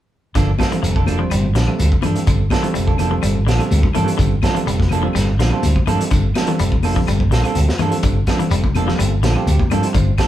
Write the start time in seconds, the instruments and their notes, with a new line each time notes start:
0.35 fingered electric bass G1, clean electric guitar D3 F3 A#3 D4 A4, kick, snare, closed hi-hat, shekere
0.59 clean electric guitar F3 A#3 D4 A4, kick, snare, closed hi-hat, high conga, claves, shekere
0.71 clean electric guitar E3, tine electric piano G3 C4 F4 A4, closed hi-hat
0.83 fingered electric bass F1, clean electric guitar F3, closed hi-hat, shekere
0.96 clean electric guitar A#3 D4 A4, kick
1.06 clean electric guitar F3 A#3 D4 A4, closed hi-hat, high conga, low conga, claves, shekere
1.18 clean electric guitar F3, tine electric piano G3 C4 F4 C5
1.30 fingered electric bass G1, clean electric guitar G3, closed hi-hat, claves, shekere
1.43 high conga, low conga
1.55 fingered electric bass A#1, clean electric guitar D3 F3 D4, snare, closed hi-hat, shekere
1.66 tine electric piano G3 C4 F4 A4, claves
1.78 fingered electric bass D2, closed hi-hat, high conga, shekere
1.92 kick
2.02 fingered electric bass G2, clean electric guitar E3 F3 D4 A4, muted clean electric guitar stroke, closed hi-hat, high conga, low conga, claves, shekere
2.15 tine electric piano G3 C4 F4 A4, closed hi-hat
2.27 fingered electric bass G1, clean electric guitar D3, kick, closed hi-hat, shekere
2.50 clean electric guitar F3 A#3 D4 A4, kick, snare, closed hi-hat, high conga, claves, shekere
2.63 clean electric guitar E3, tine electric piano G3 C4 F4 A4, closed hi-hat
2.74 fingered electric bass F1, clean electric guitar G3, closed hi-hat, shekere
2.87 clean electric guitar A#3 D4 A4, kick
2.98 clean electric guitar F3 A#3 D4 A4, closed hi-hat, high conga, low conga, claves, shekere
3.10 clean electric guitar F3, tine electric piano G3 C4 F4 A4
3.22 fingered electric bass G1, clean electric guitar G3, closed hi-hat, claves, shekere
3.35 low conga
3.47 fingered electric bass A#1, clean electric guitar D3 F3 A#3 D4 A4, snare, closed hi-hat, shekere
3.58 tine electric piano G3 C4 F4 A4, closed hi-hat, claves
3.71 fingered electric bass D2, closed hi-hat, high conga, shekere
3.83 kick, high conga
3.93 fingered electric bass G2, clean electric guitar E3 F3 A#3 D4 A4, closed hi-hat, high conga, low conga, claves, shekere
4.04 tine electric piano G3 C4 F4 A4, closed hi-hat
4.18 fingered electric bass G1, clean electric guitar D3, kick, closed hi-hat, shekere
4.42 clean electric guitar F3 A#3 D4 A4, kick, snare, closed hi-hat, high conga, claves, shekere
4.54 clean electric guitar E3, tine electric piano G3 C4 F4 A4, closed hi-hat
4.67 fingered electric bass F1, clean electric guitar G3, closed hi-hat, shekere
4.79 kick, snare, high conga
4.89 clean electric guitar F3 A#3 D4 A4, closed hi-hat, high conga, low conga, claves, shekere
5.03 clean electric guitar F3, tine electric piano G3 C4 F4 A4
5.13 fingered electric bass G1, clean electric guitar G3, snare, closed hi-hat, claves, shekere
5.39 fingered electric bass A#1, clean electric guitar D3 F3 A#3 D4, muted clean electric guitar stroke, snare, closed hi-hat, shekere
5.50 tine electric piano G3 C4 F4 C5, clean electric guitar A#3 D4 A4, claves
5.62 fingered electric bass D2, closed hi-hat, high conga, shekere
5.76 kick, high conga
5.86 fingered electric bass G2, clean electric guitar E3 F3 A#3 D4 A4, closed hi-hat, high conga, low conga, claves, shekere
5.99 tine electric piano G3 C4 F4 A4, closed hi-hat
6.11 fingered electric bass G1, clean electric guitar D3, kick, closed hi-hat, shekere
6.34 clean electric guitar F3 A#3 D4 A4, snare, closed hi-hat, high conga, claves, shekere
6.46 clean electric guitar E3, tine electric piano G3 C4 F4 A4, closed hi-hat
6.59 fingered electric bass F1, clean electric guitar G3, closed hi-hat, shekere
6.72 kick
6.83 clean electric guitar F3 A#3 D4 A4, open hi-hat, high conga, low conga, claves, shekere
6.94 clean electric guitar F3, tine electric piano G3 C4 F4 A4, kick
7.07 fingered electric bass G1, clean electric guitar G3, closed hi-hat, claves, shekere
7.19 kick, high conga
7.31 fingered electric bass A#1, clean electric guitar D3 A#3 D4 A4, snare, closed hi-hat, shekere
7.42 tine electric piano G3 C4 F4 A4, clean electric guitar A#3 D4 A4, closed hi-hat, claves
7.55 fingered electric bass D2, closed hi-hat, high conga, shekere
7.69 snare
7.79 fingered electric bass G2, clean electric guitar E3 F3 A#3 D4 A4, closed hi-hat, high conga, low conga, claves, shekere
7.89 tine electric piano G3 C4 F4 A4, closed hi-hat
8.03 fingered electric bass G1, clean electric guitar D3, kick, closed hi-hat, shekere
8.27 clean electric guitar F3 A#3 D4 A4, kick, snare, closed hi-hat, high conga, claves, shekere
8.37 clean electric guitar E3, tine electric piano G3 C4 F4 A4, closed hi-hat
8.50 fingered electric bass F1, clean electric guitar G3, closed hi-hat, shekere
8.64 kick, high conga
8.75 clean electric guitar F3 A#3 D4 A4, closed hi-hat, high conga, low conga, claves, shekere
8.86 clean electric guitar F3, tine electric piano G3 C4 F4 A4, snare
8.98 fingered electric bass G1, clean electric guitar G3, closed hi-hat, claves, shekere
9.23 fingered electric bass A#1, clean electric guitar D3 F3 A#3 D4 A4, snare, closed hi-hat, shekere
9.34 tine electric piano G3 C4 F4 G4, clean electric guitar A#3 A4, muted clean electric guitar stroke, claves
9.46 fingered electric bass D2, closed hi-hat, high conga, shekere
9.60 kick, high conga
9.70 fingered electric bass G2, clean electric guitar F3 G3 A#3 D4 A4, closed hi-hat, high conga, low conga, claves, shekere
9.82 tine electric piano G3 C4 F4 C5, closed hi-hat
9.94 fingered electric bass G1, clean electric guitar D3, kick, closed hi-hat, shekere
10.18 clean electric guitar F3 D4 A4, kick, snare, closed hi-hat, high conga, claves, shekere